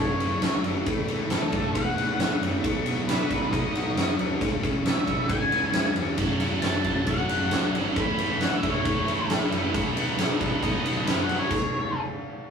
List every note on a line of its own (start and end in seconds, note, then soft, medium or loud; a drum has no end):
0.00 0.15 F#2 medium
0.00 0.18 F#2 medium
0.00 0.21 F#2 medium
0.00 0.19 C#3 medium
0.00 0.43 C#3 medium
0.00 0.19 F#3 medium
0.00 0.41 A3 medium
0.00 0.64 C#4 medium
0.00 0.61 C#5 loud
0.20 0.38 F#1 medium
0.20 0.40 F#2 loud
0.20 0.41 C#3 loud
0.20 0.41 F#3 loud
0.20 0.87 F#3 medium
0.20 ride medium
0.41 0.59 C#2 medium
0.41 0.63 F#2 medium
0.41 0.64 C#3 medium
0.41 0.64 F#3 medium
0.41 0.87 A3 medium
0.41 snare loud
0.41 ride medium
0.64 0.81 F#1 medium
0.64 0.86 F#2 medium
0.64 0.86 C#3 medium
0.64 0.86 F#3 medium
0.64 0.87 C#4 medium
0.64 ride medium
0.86 1.04 A1 medium
0.86 1.07 A2 loud
0.86 1.98 A2 medium
0.86 1.07 E3 loud
0.86 1.08 A3 medium
0.86 kick loud
0.86 ride medium
1.08 1.26 A1 medium
1.08 1.29 A2 medium
1.08 1.96 E3 medium
1.08 1.30 E3 medium
1.08 1.30 A3 medium
1.08 ride medium
1.30 1.48 A1 medium
1.30 1.52 A2 medium
1.30 1.52 E3 medium
1.30 1.53 A3 loud
1.30 1.75 B3 medium
1.30 1.77 A4 medium
1.30 snare loud
1.30 ride medium
1.52 1.70 F#1 medium
1.52 1.74 A2 medium
1.52 1.74 E3 medium
1.52 1.75 A3 medium
1.52 2.41 C#4 medium
1.52 kick medium
1.52 ride medium
1.74 1.92 E2 medium
1.74 1.96 A2 medium
1.74 1.97 E3 medium
1.74 1.97 A3 medium
1.74 2.20 B3 medium
1.74 2.37 F#5 loud
1.74 kick loud
1.74 ride loud
1.97 2.15 A1 medium
1.97 2.19 A2 medium
1.97 2.64 E3 medium
1.97 2.20 E3 loud
1.97 2.20 A3 loud
1.97 ride medium
2.19 2.36 A1 medium
2.19 2.40 A2 medium
2.19 2.42 E3 medium
2.19 2.41 A3 medium
2.19 3.09 B3 medium
2.19 snare loud
2.19 ride medium
2.41 2.58 F#1 medium
2.41 2.63 A2 medium
2.41 2.63 E3 medium
2.41 2.63 A3 medium
2.41 2.64 C#4 medium
2.41 ride medium
2.64 2.81 B1 loud
2.64 3.75 B2 medium
2.64 2.84 B2 medium
2.64 2.85 F#3 loud
2.64 2.86 B3 loud
2.64 kick loud
2.64 ride medium
2.85 3.02 B1 medium
2.85 3.07 B2 medium
2.85 3.07 F#3 medium
2.85 3.74 F#3 medium
2.85 3.09 B3 loud
2.85 ride medium
3.07 3.25 B1 medium
3.07 3.28 B2 medium
3.07 3.29 F#3 medium
3.07 3.30 B3 loud
3.07 3.52 B3 medium
3.07 3.49 B4 medium
3.07 snare loud
3.07 ride loud
3.29 3.48 B1 medium
3.29 3.51 B2 medium
3.29 3.52 F#3 medium
3.29 3.52 B3 medium
3.29 4.18 D#4 medium
3.29 kick medium
3.29 ride medium
3.51 3.73 B2 medium
3.51 3.70 B2 medium
3.51 3.73 F#3 medium
3.51 3.73 B3 medium
3.51 3.96 B3 medium
3.51 4.15 D#5 loud
3.51 kick loud
3.51 ride medium
3.74 3.92 B1 medium
3.74 3.95 B2 loud
3.74 3.96 F#3 loud
3.74 4.41 F#3 medium
3.74 3.96 B3 loud
3.74 ride medium
3.96 4.14 F#2 loud
3.96 4.18 B2 medium
3.96 4.19 F#3 medium
3.96 4.19 B3 loud
3.96 4.41 B3 medium
3.96 snare loud
3.96 ride medium
4.19 4.36 D#2 loud
4.19 4.40 B2 medium
4.19 4.40 F#3 medium
4.19 4.40 B3 medium
4.19 4.41 D#4 medium
4.19 ride medium
4.41 4.58 C#2 loud
4.41 4.63 C#3 loud
4.41 5.52 C#3 medium
4.41 4.63 G#3 loud
4.41 4.65 C#4 loud
4.41 kick loud
4.41 ride medium
4.63 4.80 C#2 medium
4.63 4.85 C#3 medium
4.63 5.51 E3 medium
4.63 4.86 G#3 medium
4.63 4.87 C#4 medium
4.63 kick medium
4.63 ride medium
4.85 5.02 C#2 medium
4.85 5.06 C#3 medium
4.85 5.27 G#3 medium
4.85 5.07 G#3 medium
4.85 5.08 C#4 medium
4.85 5.27 E5 medium
4.85 snare loud
4.85 ride medium
5.07 5.25 B1 medium
5.07 5.28 C#3 medium
5.07 5.29 G#3 medium
5.07 5.95 B3 medium
5.07 5.30 C#4 medium
5.07 kick medium
5.07 ride medium
5.29 5.47 G#2 medium
5.29 5.51 C#3 medium
5.29 5.73 G#3 medium
5.29 5.51 G#3 medium
5.29 5.52 C#4 medium
5.29 5.92 G#5 loud
5.29 kick loud
5.29 ride medium
5.51 5.69 C#2 medium
5.51 5.73 C#3 medium
5.51 6.18 E3 medium
5.51 5.74 G#3 loud
5.51 5.75 C#4 loud
5.51 ride medium
5.73 5.90 C#2 medium
5.73 5.95 C#3 medium
5.73 6.18 G#3 medium
5.73 5.96 G#3 medium
5.73 5.97 C#4 medium
5.73 snare loud
5.73 ride medium
5.95 6.13 E2 medium
5.95 6.17 C#3 medium
5.95 6.18 G#3 medium
5.95 6.18 B3 medium
5.95 7.97 C#4 medium
5.95 ride medium
6.18 6.35 F#1 loud
6.18 6.39 F#2 loud
6.18 6.40 C#3 loud
6.18 6.40 F#3 loud
6.18 6.39 A3 medium
6.18 6.40 C#4 medium
6.18 6.39 F#4 loud
6.18 kick loud
6.18 ride loud
6.39 6.57 F#1 medium
6.39 6.62 F#2 medium
6.39 6.62 C#3 loud
6.39 6.63 F#3 medium
6.39 6.62 A3 medium
6.39 6.62 C#4 medium
6.39 6.62 F#4 medium
6.39 ride medium
6.62 6.79 F#1 medium
6.62 6.84 F#2 loud
6.62 6.85 C#3 loud
6.62 6.84 F#3 loud
6.62 6.84 A3 medium
6.62 6.84 C#4 medium
6.62 6.84 F#4 medium
6.62 7.04 A5 loud
6.62 snare loud
6.62 ride medium
6.84 7.02 F#1 medium
6.84 7.07 F#2 medium
6.84 7.08 C#3 medium
6.84 7.08 F#3 medium
6.84 7.06 A3 medium
6.84 7.06 C#4 medium
6.84 7.07 F#4 loud
6.84 kick medium
6.84 ride medium
7.07 7.24 F#2 medium
7.07 7.29 F#2 medium
7.07 7.30 C#3 medium
7.07 7.30 F#3 medium
7.07 7.28 A3 medium
7.07 7.29 C#4 medium
7.07 7.29 F#4 medium
7.07 7.70 F#5 medium
7.07 kick loud
7.07 ride medium
7.29 7.47 F#1 medium
7.29 7.51 F#2 loud
7.29 7.52 C#3 loud
7.29 7.52 F#3 loud
7.29 7.51 A3 medium
7.29 7.52 C#4 medium
7.29 7.53 F#4 medium
7.29 ride medium
7.51 7.69 C#2 medium
7.51 7.73 F#2 medium
7.51 7.75 C#3 medium
7.51 7.74 F#3 medium
7.51 7.72 A3 medium
7.51 7.72 C#4 loud
7.51 7.73 F#4 medium
7.51 snare loud
7.51 ride loud
7.73 7.90 G#1 medium
7.73 7.95 F#2 medium
7.73 7.96 C#3 medium
7.73 7.96 F#3 medium
7.73 7.94 A3 medium
7.73 7.95 C#4 medium
7.73 7.95 F#4 medium
7.73 ride medium
7.96 8.13 A1 loud
7.96 8.18 A2 medium
7.96 8.19 E3 loud
7.96 8.19 A3 medium
7.96 8.18 C#4 medium
7.96 8.18 E4 loud
7.96 8.40 B5 loud
7.96 kick loud
7.96 ride medium
8.18 8.36 A1 medium
8.18 8.40 A2 medium
8.18 8.41 E3 medium
8.18 8.41 A3 medium
8.18 8.40 C#4 medium
8.18 8.40 E4 medium
8.18 ride medium
8.41 8.58 A1 medium
8.41 8.64 A2 medium
8.41 8.64 E3 loud
8.41 8.64 A3 loud
8.41 8.62 C#4 medium
8.41 8.63 E4 loud
8.41 8.56 F#5 medium
8.41 snare loud
8.41 ride medium
8.57 8.70 E5 medium
8.63 8.80 F#1 medium
8.63 8.86 A2 medium
8.63 8.86 E3 medium
8.63 8.87 A3 medium
8.63 8.84 C#4 loud
8.63 8.85 E4 medium
8.63 kick medium
8.63 ride medium
8.71 9.33 C#5 medium
8.85 9.02 E2 medium
8.85 9.08 A2 medium
8.85 9.08 E3 medium
8.85 9.08 A3 medium
8.85 9.06 C#4 medium
8.85 9.06 E4 medium
8.85 kick loud
8.85 ride medium
9.07 9.24 A1 medium
9.07 9.29 A2 loud
9.07 9.30 E3 loud
9.07 9.31 A3 loud
9.07 9.29 C#4 medium
9.07 9.29 E4 medium
9.07 ride medium
9.30 9.46 A1 medium
9.30 9.51 A2 medium
9.30 9.52 E3 medium
9.30 9.52 A3 loud
9.30 9.52 C#4 loud
9.30 9.52 E4 medium
9.30 snare loud
9.30 ride medium
9.51 9.68 F#1 medium
9.51 9.73 A2 medium
9.51 9.73 E3 medium
9.51 9.73 A3 medium
9.51 9.73 C#4 medium
9.51 9.73 E4 medium
9.51 ride medium
9.74 9.91 B1 loud
9.74 9.95 B2 medium
9.74 9.94 D#3 medium
9.74 9.96 F#3 medium
9.74 9.96 B3 loud
9.74 9.95 D#4 medium
9.74 kick loud
9.74 ride loud
9.95 10.12 B1 medium
9.95 10.17 B2 loud
9.95 10.16 D#3 loud
9.95 10.18 F#3 loud
9.95 10.18 B3 medium
9.95 10.18 D#4 loud
9.95 ride medium
10.17 10.35 B1 medium
10.17 10.41 B2 medium
10.17 10.38 D#3 medium
10.17 10.41 F#3 loud
10.17 10.42 B3 loud
10.17 10.40 D#4 loud
10.17 snare loud
10.17 ride loud
10.39 10.57 B1 medium
10.39 10.62 B2 medium
10.39 10.60 D#3 medium
10.39 10.62 F#3 medium
10.39 10.63 B3 medium
10.39 10.62 D#4 loud
10.39 kick medium
10.39 ride medium
10.62 10.79 B2 medium
10.62 10.83 B2 medium
10.62 10.82 D#3 medium
10.62 10.84 F#3 medium
10.62 10.84 B3 medium
10.62 10.84 D#4 loud
10.62 11.04 D#5 medium
10.62 kick loud
10.62 ride medium
10.83 11.01 B1 medium
10.83 11.05 B2 medium
10.83 11.04 D#3 medium
10.83 11.06 F#3 loud
10.83 11.06 B3 loud
10.83 11.06 D#4 medium
10.83 ride medium
11.05 11.24 F#2 loud
11.05 11.28 B2 medium
11.05 11.27 D#3 medium
11.05 11.28 F#3 medium
11.05 11.29 B3 medium
11.05 11.28 D#4 medium
11.05 11.20 B4 medium
11.05 snare loud
11.05 ride loud
11.22 11.37 F#5 loud
11.28 11.45 C2 medium
11.28 11.50 B2 medium
11.28 11.49 D#3 medium
11.28 11.50 F#3 medium
11.28 11.50 B3 medium
11.28 11.50 D#4 medium
11.28 ride medium
11.38 11.99 C#5 medium
11.51 kick loud
11.51 crash loud